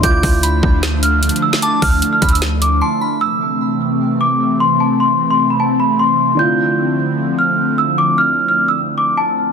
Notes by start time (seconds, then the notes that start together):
0.00 D2 D3 F3 A3 D4 E4 D6 G6, kick, closed hi-hat
0.05 F4
0.23 D2, kick, open hi-hat
0.43 B5, closed hi-hat
0.63 D2, kick
0.83 snare, closed hi-hat
1.03 F6, closed hi-hat
1.23 closed hi-hat
1.29 closed hi-hat
1.36 closed hi-hat
1.42 E6
1.53 snare
1.62 A5 D6, closed hi-hat
1.82 D2 F6, kick, open hi-hat
2.02 closed hi-hat
2.13 F6
2.22 D2 B5, kick, closed hi-hat
2.29 E6, closed hi-hat
2.35 closed hi-hat
2.42 snare, closed hi-hat
2.62 D6, closed hi-hat
2.81 A5 C6
3.01 B5
3.21 C3 E3 A3 C4 E6
4.21 D6
4.60 C6
4.80 A5
5.00 C6
5.31 C6
5.50 B5
5.60 A5
5.80 B5
5.99 C6
6.35 D3 D4
6.39 D3 F3 E4 F4 G6
7.39 F6
7.78 E6
7.98 D6
8.18 F6
8.48 F6
8.68 E6
8.98 D6
9.17 A5